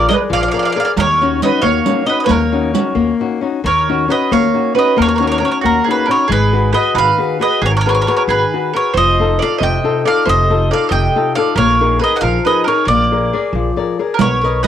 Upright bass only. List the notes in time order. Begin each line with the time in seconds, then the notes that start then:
0.30 A#1
0.96 D#2
1.63 D#2
2.29 D#2
2.95 D#2
3.64 D#2
4.32 D#2
4.99 D#2
5.64 D#2
6.29 G#1
6.94 G#1
7.62 G#1
8.28 G#1
8.94 F1
9.61 F1
10.27 F1
10.91 F1
11.55 A#1
12.22 A#1
12.87 A#1
13.53 A#1
14.19 B1